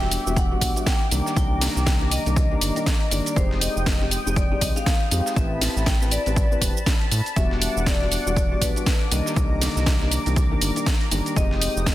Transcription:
Already playing: analog synth bass E1, analog synth pad E5 G5 D6, vibraphone G5
0.01 felt piano G3 B3 D4 F#4, snare
0.11 closed hi-hat, open hi-hat, shaker
0.26 analog synth bass E1, felt piano G3 B3 D4 F#4, shaker
0.36 vibraphone F#5, kick, closed hi-hat, shaker
0.51 felt piano G3 B3 D4 F#4
0.61 analog synth bass B1, kick, closed hi-hat, open hi-hat, shaker
0.76 felt piano G3 B3 D4 F#4, closed hi-hat, shaker
0.86 vibraphone G5, kick, snare, closed hi-hat, shaker
1.11 analog synth bass C2, felt piano D#3 G3 A#3 D4, analog synth pad A#5, closed hi-hat, open hi-hat, shaker
1.26 snare, shaker
1.36 analog synth bass C2, felt piano D#3 G3 A#3 D4, vibraphone G5, kick, closed hi-hat, shaker
1.61 snare, open hi-hat, shaker
1.76 analog synth bass C2, snare, shaker
1.86 kick, snare, closed hi-hat, shaker
2.01 felt piano D#3 G3 A#3 D4, snare
2.11 vibraphone D#5, closed hi-hat, open hi-hat, shaker
2.26 analog synth bass C2, felt piano D#3 G3 A#3 D4, closed hi-hat, shaker
2.36 kick, closed hi-hat, shaker
2.51 felt piano D#3 G3 A#3 D4
2.61 analog synth bass G1, closed hi-hat, open hi-hat, shaker
2.76 felt piano D#3 G3 A#3 D4, closed hi-hat, shaker
2.86 kick, snare, closed hi-hat, shaker
3.01 closed hi-hat
3.11 analog synth bass G1, felt piano D#3 G3 A#3 D4, vibraphone D5, closed hi-hat, open hi-hat, shaker
3.26 closed hi-hat, shaker
3.36 analog synth bass F1, felt piano G#3 C4 D#4 G4, vibraphone C5, analog synth pad G5 D#6, kick, closed hi-hat, shaker
3.51 snare
3.61 vibraphone D#5, closed hi-hat, open hi-hat, shaker
3.76 analog synth bass F1, shaker
3.86 kick, snare, closed hi-hat, shaker
4.01 felt piano G#3 C4 D#4 G4, snare
4.11 closed hi-hat, open hi-hat, shaker
4.26 analog synth bass F1, felt piano G#3 C4 D#4 G4, shaker
4.36 vibraphone D5, kick, closed hi-hat, shaker
4.51 felt piano G#3 C4 D#4 G4
4.61 analog synth bass C2, vibraphone D#5, kick, closed hi-hat, open hi-hat, shaker
4.76 felt piano G#3 C4 D#4 G4, vibraphone F5, closed hi-hat, shaker
4.86 kick, snare, closed hi-hat, shaker
5.11 analog synth bass F2, felt piano G#3 C4 D#4 G4, closed hi-hat, open hi-hat, shaker
5.26 snare, shaker
5.36 analog synth bass A1, felt piano C4 E4 G4 B4, vibraphone E5, analog synth pad A5 B5, kick, closed hi-hat, shaker
5.61 snare, open hi-hat, shaker
5.76 analog synth bass A1, snare, shaker
5.86 vibraphone G5, kick, snare, closed hi-hat, shaker
6.01 felt piano C4 E4 G4 B4, snare, shaker
6.11 vibraphone D5, closed hi-hat, open hi-hat, shaker
6.26 analog synth bass A1, felt piano C4 E4 G4 B4, closed hi-hat, shaker
6.36 kick, closed hi-hat, shaker
6.51 felt piano C4 E4 G4 B4, shaker
6.61 analog synth bass E1, felt piano C4 E4 G4 B4, kick, open hi-hat, shaker
6.77 shaker
6.86 kick, snare, closed hi-hat, shaker
7.01 closed hi-hat
7.11 analog synth bass A2, closed hi-hat, open hi-hat, shaker
7.26 closed hi-hat, shaker
7.36 analog synth bass E1, felt piano G3 B3 D4 F#4, vibraphone E5, analog synth pad F#5 D6, kick, closed hi-hat, shaker
7.51 snare
7.62 closed hi-hat, open hi-hat, shaker
7.76 analog synth bass E1, shaker
7.86 vibraphone D5, kick, snare, closed hi-hat, shaker
8.01 felt piano G3 B3 D4 F#4, snare
8.12 closed hi-hat, open hi-hat, shaker
8.26 analog synth bass E1, felt piano G3 B3 D4 F#4, shaker
8.36 vibraphone D5, kick, closed hi-hat, shaker
8.51 felt piano G3 B3 D4 F#4
8.61 analog synth bass B1, vibraphone B4, kick, closed hi-hat, open hi-hat, shaker
8.76 felt piano G3 B3 D4 F#4, closed hi-hat, shaker
8.86 kick, snare, closed hi-hat, shaker
9.11 analog synth bass C2, felt piano D#3 G3 A#3 D4, vibraphone D#5, analog synth pad A#5, closed hi-hat, open hi-hat, shaker
9.26 snare, shaker
9.36 analog synth bass C2, felt piano D3 D#3 G3 A#3, kick, closed hi-hat, shaker
9.61 snare, open hi-hat, shaker
9.76 analog synth bass C2, snare, shaker
9.86 kick, snare, closed hi-hat, shaker
10.01 felt piano D#3 G3 A#3 D4, snare
10.11 closed hi-hat, open hi-hat, shaker
10.26 analog synth bass C2, felt piano D#3 G3 A#3 D4, closed hi-hat, shaker
10.36 kick, closed hi-hat, shaker
10.51 felt piano D#3 G3 A#3 D4
10.61 analog synth bass G1, closed hi-hat, open hi-hat, shaker
10.76 felt piano D#3 G3 A#3 D4, closed hi-hat, shaker
10.86 kick, snare, closed hi-hat, shaker
11.01 closed hi-hat
11.11 analog synth bass G1, felt piano D#3 G3 A#3 D4, closed hi-hat, open hi-hat, shaker
11.26 closed hi-hat, shaker
11.36 analog synth bass F1, felt piano C4 D#4 G4, vibraphone D#5, analog synth pad G5 D#6, kick, closed hi-hat, shaker
11.51 snare
11.61 closed hi-hat, open hi-hat, shaker
11.76 analog synth bass F1, shaker
11.86 kick, snare, closed hi-hat, shaker

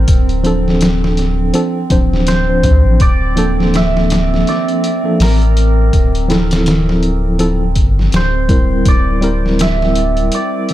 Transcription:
Already playing: ambient pad C4, hammered dulcimer A#4 C5
0.08 sub bass D1, kick, closed hi-hat
0.29 closed hi-hat
0.43 tine electric piano F3 C4 D4 A4, closed hi-hat
0.68 snare
0.81 snare, closed hi-hat
1.04 snare
1.17 snare, closed hi-hat
1.53 tine electric piano F3 C4 D4 A4, closed hi-hat
1.90 sub bass D1, tine electric piano F3 C4 D4 C5, kick, closed hi-hat
2.11 sub bass D1, snare
2.27 hammered dulcimer C5, snare, closed hi-hat
2.48 tine electric piano F3 C4 D4 C5
2.63 sub bass D2, kick, closed hi-hat
2.84 sub bass A1
3.00 hammered dulcimer D5, kick, closed hi-hat
3.36 tine electric piano F3 A#3 D4 A4, closed hi-hat
3.60 snare
3.74 hammered dulcimer E5, snare, closed hi-hat
3.97 snare
4.10 snare, closed hi-hat
4.34 snare
4.47 hammered dulcimer D5, snare, closed hi-hat
4.68 closed hi-hat
4.84 closed hi-hat
5.04 tine electric piano F3 A#3 D4 A4
5.20 sub bass A1, hammered dulcimer A#4, snare, open hi-hat
5.42 closed hi-hat
5.57 closed hi-hat
5.93 sub bass D1, kick, closed hi-hat
6.15 closed hi-hat
6.28 tine electric piano F3 C4 E4 A4, snare, closed hi-hat
6.51 snare, closed hi-hat
6.66 snare, closed hi-hat
6.89 snare
7.03 closed hi-hat
7.39 tine electric piano F3 C4 E4 A4, closed hi-hat
7.75 sub bass G1, kick, closed hi-hat
7.99 snare
8.12 sub bass D1, hammered dulcimer C5, snare, closed hi-hat
8.48 tine electric piano G3 C4 E4 A#4, kick, closed hi-hat
8.85 sub bass D1, ambient pad C4, hammered dulcimer D5, kick, closed hi-hat
9.21 tine electric piano G3 C4 E4 A#4, closed hi-hat
9.46 snare
9.59 hammered dulcimer E5, snare, closed hi-hat
9.82 snare
9.95 closed hi-hat
10.17 closed hi-hat
10.32 hammered dulcimer D5, closed hi-hat
10.69 snare, closed hi-hat

